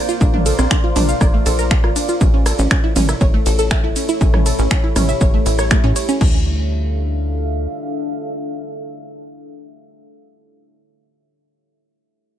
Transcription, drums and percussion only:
0.09 shaker medium
0.21 kick loud
0.21 ride medium
0.21 shaker medium
0.34 mid tom medium
0.46 open hi-hat loud
0.46 ride medium
0.46 shaker medium
0.59 cross-stick medium
0.59 shaker medium
0.71 finger snap loud
0.71 kick loud
0.71 shaker medium
0.96 mid tom medium
0.96 open hi-hat loud
0.96 ride medium
0.96 shaker medium
1.09 shaker medium
1.21 kick loud
1.21 cross-stick medium
1.21 ride medium
1.21 shaker medium
1.46 open hi-hat loud
1.46 ride medium
1.46 shaker medium
1.59 shaker medium
1.71 finger snap loud
1.71 kick loud
1.71 shaker medium
1.84 cross-stick medium
1.96 open hi-hat loud
1.96 ride medium
1.96 shaker medium
2.09 shaker medium
2.21 kick loud
2.21 ride medium
2.21 shaker medium
2.46 cross-stick medium
2.46 open hi-hat loud
2.46 ride medium
2.46 shaker medium
2.59 shaker medium
2.71 finger snap loud
2.71 kick loud
2.71 ride medium
2.71 shaker medium
2.96 mid tom medium
2.96 open hi-hat loud
2.96 ride medium
2.96 shaker medium
3.09 cross-stick medium
3.09 shaker medium
3.21 kick loud
3.21 ride medium
3.21 shaker medium
3.46 open hi-hat loud
3.46 ride medium
3.46 shaker medium
3.59 shaker medium
3.71 finger snap loud
3.71 kick loud
3.71 cross-stick soft
3.71 shaker medium
3.96 open hi-hat loud
3.96 ride medium
3.96 shaker medium
4.09 shaker medium
4.21 kick loud
4.21 ride medium
4.21 shaker medium
4.34 cross-stick soft
4.34 mid tom medium
4.46 open hi-hat loud
4.46 ride medium
4.46 shaker medium
4.59 shaker medium
4.71 finger snap loud
4.71 kick loud
4.71 shaker medium
4.96 cross-stick medium
4.96 mid tom loud
4.96 open hi-hat loud
4.96 ride medium
4.96 shaker medium
5.09 shaker medium
5.21 kick loud
5.21 ride medium
5.21 shaker medium
5.46 open hi-hat loud
5.46 ride medium
5.46 shaker medium
5.59 cross-stick medium
5.59 shaker medium
5.71 finger snap loud
5.71 kick loud
5.71 ride medium
5.71 shaker medium
5.96 open hi-hat loud
5.96 ride medium
5.96 shaker medium
6.09 shaker medium
6.21 kick loud
6.21 crash medium

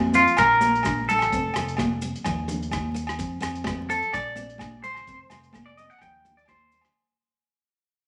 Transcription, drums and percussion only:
0.14 closed hi-hat soft
0.14 muted conga soft
0.14 maracas medium
0.28 closed hi-hat soft
0.37 kick medium
0.37 cross-stick medium
0.37 closed hi-hat soft
0.37 muted conga soft
0.37 low agogo medium
0.37 maracas medium
0.61 closed hi-hat soft
0.61 high conga medium
0.61 maracas medium
0.75 closed hi-hat soft
0.83 kick medium
0.83 cross-stick medium
0.83 closed hi-hat soft
0.83 high conga medium
0.83 low agogo medium
0.83 maracas medium
1.09 closed hi-hat soft
1.09 maracas medium
1.19 cross-stick medium
1.19 closed hi-hat soft
1.19 low agogo medium
1.19 maracas soft
1.32 kick medium
1.32 closed hi-hat soft
1.32 muted conga soft
1.32 maracas medium
1.54 cross-stick medium
1.54 closed hi-hat soft
1.54 muted conga soft
1.54 low agogo medium
1.54 maracas medium
1.68 closed hi-hat soft
1.77 kick medium
1.77 cross-stick medium
1.77 closed hi-hat medium
1.77 high conga medium
1.77 low agogo medium
1.77 maracas medium
2.01 closed hi-hat soft
2.01 muted conga soft
2.01 maracas loud
2.16 closed hi-hat soft
2.24 kick medium
2.24 cross-stick medium
2.24 closed hi-hat soft
2.24 muted conga soft
2.24 low conga medium
2.24 low agogo medium
2.24 maracas medium
2.48 closed hi-hat medium
2.48 high conga medium
2.48 low conga medium
2.48 maracas medium
2.63 closed hi-hat soft
2.71 kick medium
2.71 cross-stick medium
2.71 closed hi-hat medium
2.71 high conga medium
2.71 low agogo medium
2.71 maracas medium
2.96 closed hi-hat soft
2.96 maracas medium
3.07 cross-stick medium
3.07 closed hi-hat soft
3.07 low agogo medium
3.07 maracas soft
3.18 kick medium
3.18 closed hi-hat soft
3.18 muted conga soft
3.18 maracas medium
3.41 cross-stick medium
3.41 closed hi-hat soft
3.41 muted conga soft
3.41 low agogo medium
3.41 maracas medium
3.55 closed hi-hat soft
3.64 kick medium
3.64 cross-stick medium
3.64 closed hi-hat soft
3.64 high conga medium
3.64 low agogo medium
3.64 maracas medium
3.89 closed hi-hat soft
3.89 muted conga soft
3.89 maracas medium
4.03 closed hi-hat soft
4.13 kick medium
4.13 cross-stick medium
4.13 closed hi-hat soft
4.13 muted conga soft
4.13 low agogo medium
4.13 maracas medium
4.36 closed hi-hat soft
4.36 high conga medium
4.36 maracas medium
4.50 closed hi-hat soft
4.58 kick medium
4.58 cross-stick medium
4.58 closed hi-hat soft
4.58 high conga medium
4.58 low agogo medium
4.58 maracas medium
4.84 closed hi-hat soft
4.84 maracas medium
4.94 cross-stick medium
4.94 closed hi-hat soft
4.94 low agogo medium
4.94 maracas soft
5.06 kick medium
5.06 closed hi-hat soft
5.06 muted conga soft
5.06 maracas medium
5.30 cross-stick medium
5.30 closed hi-hat soft
5.30 low agogo medium
5.30 maracas medium
5.44 closed hi-hat soft
5.44 maracas soft
5.53 kick medium
5.53 cross-stick medium
5.53 closed hi-hat soft
5.53 high conga medium
5.53 low agogo medium
5.53 maracas medium
5.76 closed hi-hat soft
5.76 muted conga soft
5.76 maracas medium
5.91 closed hi-hat soft
5.98 kick medium
5.98 cross-stick medium
5.98 closed hi-hat soft
5.98 muted conga soft
5.98 low conga medium
5.98 low agogo medium
5.98 maracas medium
6.25 closed hi-hat soft
6.25 high conga medium
6.25 low conga medium
6.25 maracas medium
6.38 closed hi-hat soft
6.38 maracas soft
6.46 kick medium
6.46 cross-stick medium
6.46 closed hi-hat soft
6.46 high conga medium
6.46 low agogo medium
6.46 maracas medium
6.72 closed hi-hat soft
6.72 maracas medium
6.81 cross-stick medium
6.81 closed hi-hat soft
6.81 low agogo medium
6.81 maracas soft

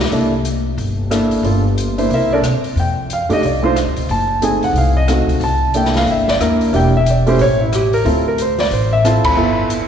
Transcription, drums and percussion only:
0.12 open hi-hat soft
0.45 closed hi-hat soft
0.78 open hi-hat soft
1.11 cross-stick medium
1.11 closed hi-hat medium
1.31 open hi-hat soft
1.44 open hi-hat soft
1.78 closed hi-hat medium
1.98 open hi-hat soft
2.10 open hi-hat soft
2.44 cross-stick medium
2.44 closed hi-hat soft
2.64 open hi-hat soft
2.77 open hi-hat soft
3.10 closed hi-hat soft
3.30 open hi-hat soft
3.43 open hi-hat soft
3.76 cross-stick medium
3.76 closed hi-hat soft
3.96 open hi-hat soft
4.09 open hi-hat soft
4.42 closed hi-hat soft
4.63 open hi-hat soft
4.76 open hi-hat soft
5.08 cross-stick medium
5.08 closed hi-hat medium
5.29 open hi-hat soft
5.41 open hi-hat soft
5.74 closed hi-hat soft
5.85 snare soft
5.94 snare soft
5.94 open hi-hat soft
6.07 open hi-hat soft
6.28 snare soft
6.41 cross-stick medium
6.41 closed hi-hat soft
6.61 open hi-hat soft
6.74 open hi-hat soft
7.06 closed hi-hat medium
7.27 open hi-hat soft
7.39 open hi-hat soft
7.73 cross-stick medium
7.73 closed hi-hat medium
7.93 open hi-hat soft
8.06 open hi-hat soft
8.38 closed hi-hat medium
8.58 snare soft
8.58 open hi-hat soft
8.71 open hi-hat soft
9.05 cross-stick medium
9.05 closed hi-hat medium
9.24 kick medium
9.24 ride medium
9.70 closed hi-hat medium

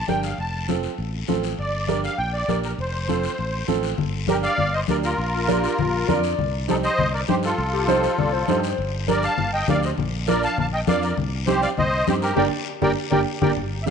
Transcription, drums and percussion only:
0.08 high conga medium
0.08 short guiro medium
0.23 short guiro medium
0.38 high conga soft
0.38 long guiro medium
0.68 high conga medium
0.68 short guiro medium
0.83 short guiro medium
0.98 high conga soft
0.98 long guiro medium
1.28 high conga medium
1.28 short guiro medium
1.43 short guiro medium
1.59 high conga soft
1.59 long guiro medium
1.88 high conga medium
1.88 short guiro medium
2.04 short guiro medium
2.19 high conga soft
2.19 long guiro medium
2.49 high conga medium
2.49 short guiro medium
2.64 short guiro medium
2.79 high conga soft
2.79 long guiro medium
3.09 high conga medium
3.09 short guiro medium
3.24 short guiro medium
3.38 high conga soft
3.38 long guiro medium
3.68 high conga medium
3.68 short guiro medium
3.83 short guiro medium
3.98 high conga soft
3.98 low conga medium
3.98 long guiro medium
4.28 high conga medium
4.28 short guiro medium
4.43 short guiro medium
4.58 high conga soft
4.58 low conga medium
4.58 long guiro medium
4.88 high conga medium
4.88 short guiro medium
5.03 short guiro medium
5.18 high conga soft
5.18 long guiro medium
5.49 high conga medium
5.49 short guiro medium
5.64 short guiro medium
5.79 high conga soft
5.79 low conga medium
5.79 long guiro medium
6.09 high conga medium
6.09 low conga medium
6.09 short guiro medium
6.23 short guiro medium
6.39 high conga soft
6.39 low conga medium
6.39 long guiro medium
6.68 high conga medium
6.68 short guiro medium
6.83 short guiro medium
6.98 high conga soft
6.98 low conga medium
6.98 long guiro medium
7.28 high conga medium
7.28 short guiro medium
7.43 short guiro medium
7.58 high conga soft
7.58 long guiro medium
7.88 high conga medium
7.88 short guiro medium
8.03 short guiro medium
8.18 high conga soft
8.18 low conga medium
8.18 long guiro medium
8.48 high conga medium
8.48 short guiro medium
8.63 short guiro medium
8.78 high conga soft
8.78 long guiro medium
9.08 high conga medium
9.08 short guiro medium
9.23 short guiro medium
9.38 high conga soft
9.38 low conga medium
9.38 long guiro medium
9.68 high conga medium
9.68 low conga medium
9.68 short guiro medium
9.83 short guiro medium
9.98 high conga soft
9.98 low conga medium
9.98 long guiro medium
10.27 high conga medium
10.27 short guiro medium
10.43 short guiro medium
10.58 high conga soft
10.58 low conga medium
10.58 long guiro medium
10.87 high conga medium
10.87 short guiro medium
11.02 short guiro medium
11.18 high conga soft
11.18 low conga medium
11.18 long guiro medium
11.47 high conga medium
11.47 short guiro medium
11.62 short guiro medium
11.77 high conga soft
11.77 low conga medium
11.77 long guiro medium
12.07 high conga medium
12.07 short guiro medium
12.22 short guiro medium
12.37 low conga loud
12.37 long guiro loud
12.82 low conga loud
12.82 long guiro medium
13.12 low conga medium
13.12 long guiro loud
13.42 low conga loud
13.42 long guiro medium
13.57 high conga soft
13.57 low conga medium
13.57 long guiro medium
13.87 high conga medium
13.87 short guiro medium

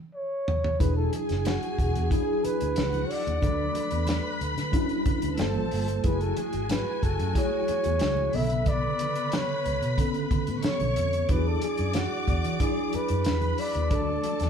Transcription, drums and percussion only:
0.48 floor tom medium
0.64 floor tom medium
0.80 kick medium
0.80 closed hi-hat medium
0.80 muted conga soft
1.13 closed hi-hat medium
1.13 muted conga soft
1.29 snare soft
1.29 closed hi-hat soft
1.45 snare loud
1.45 closed hi-hat medium
1.45 high conga medium
1.63 closed hi-hat soft
1.79 kick medium
1.79 closed hi-hat medium
1.95 closed hi-hat soft
2.11 kick medium
2.11 closed hi-hat medium
2.44 closed hi-hat medium
2.44 muted conga soft
2.61 closed hi-hat medium
2.76 snare loud
2.76 closed hi-hat medium
2.76 high conga medium
2.93 closed hi-hat soft
2.93 high conga medium
3.11 open hi-hat medium
3.27 closed hi-hat soft
3.42 kick medium
3.42 closed hi-hat medium
3.42 muted conga soft
3.75 closed hi-hat medium
3.75 muted conga medium
3.91 closed hi-hat soft
4.07 snare loud
4.07 closed hi-hat medium
4.07 high conga medium
4.41 closed hi-hat medium
4.58 snare soft
4.58 closed hi-hat soft
4.73 kick medium
4.73 closed hi-hat loud
4.73 muted conga soft
4.89 closed hi-hat soft
5.06 kick medium
5.06 closed hi-hat medium
5.06 muted conga medium
5.06 low conga medium
5.22 closed hi-hat medium
5.38 snare loud
5.38 closed hi-hat medium
5.38 high conga medium
5.54 high conga medium
5.71 open hi-hat medium
5.88 closed hi-hat soft
6.04 kick medium
6.04 closed hi-hat medium
6.04 muted conga soft
6.21 closed hi-hat soft
6.37 closed hi-hat medium
6.37 muted conga soft
6.53 closed hi-hat soft
6.69 snare loud
6.69 closed hi-hat medium
6.69 high conga medium
7.03 kick medium
7.03 closed hi-hat medium
7.20 closed hi-hat soft
7.35 kick medium
7.35 closed hi-hat medium
7.35 muted conga soft
7.68 closed hi-hat medium
7.68 muted conga medium
7.84 closed hi-hat medium
7.99 snare loud
7.99 closed hi-hat medium
7.99 high conga medium
8.17 high conga medium
8.33 open hi-hat medium
8.50 closed hi-hat soft
8.66 kick loud
8.66 closed hi-hat medium
8.66 muted conga soft
8.99 closed hi-hat medium
8.99 muted conga medium
9.15 closed hi-hat soft
9.32 snare loud
9.32 closed hi-hat medium
9.32 high conga medium
9.66 closed hi-hat medium
9.83 closed hi-hat soft
9.98 kick medium
9.98 closed hi-hat medium
10.14 closed hi-hat soft
10.31 kick medium
10.31 closed hi-hat medium
10.31 muted conga soft
10.31 low conga medium
10.47 closed hi-hat medium
10.63 snare loud
10.63 closed hi-hat medium
10.63 high conga medium
10.80 closed hi-hat soft
10.80 high conga medium
10.96 closed hi-hat medium
11.13 closed hi-hat soft
11.29 kick medium
11.29 closed hi-hat medium
11.29 muted conga soft
11.62 closed hi-hat medium
11.62 muted conga medium
11.78 closed hi-hat soft
11.94 snare loud
11.94 closed hi-hat medium
11.94 high conga medium
12.28 kick medium
12.28 closed hi-hat medium
12.45 closed hi-hat soft
12.60 kick medium
12.60 closed hi-hat medium
12.93 closed hi-hat medium
12.93 muted conga soft
13.08 closed hi-hat medium
13.24 snare loud
13.24 closed hi-hat medium
13.24 high conga medium
13.42 closed hi-hat soft
13.42 high conga medium
13.58 open hi-hat medium
13.74 closed hi-hat soft
13.91 kick medium
13.91 closed hi-hat medium
13.91 muted conga soft
14.24 closed hi-hat medium
14.24 muted conga medium
14.40 snare soft
14.40 closed hi-hat soft

